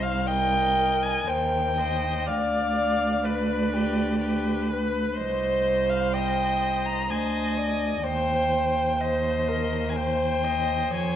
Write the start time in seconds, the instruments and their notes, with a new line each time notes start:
Already playing: cello C2, violin C5
0.03 violin F5
0.27 viola A#4, violin D#5 G5
1.03 violin G#5
1.27 cello D#2, violin A#4 G5, viola C5
1.77 violin C5, viola D#5
2.27 cello D2, viola D5, violin D5 F5
3.25 viola B4, violin B4 D5
3.73 violin G4
4.21 violin G4, viola B4
4.69 violin B4
5.17 cello C2, viola C5, violin C5 D#5
5.90 violin F5
6.13 viola D#5, violin G5
6.86 violin A#5
7.10 cello D2, violin C5 G#5, viola D#5
7.58 violin D5
8.04 cello D#2, viola C5, violin C5 G5
9.00 viola C5, violin C5 D#5
9.48 viola A#4
9.89 violin G#5
9.96 viola C5, violin G5
10.45 viola D#5
10.94 cello F2, viola C#5, violin G#5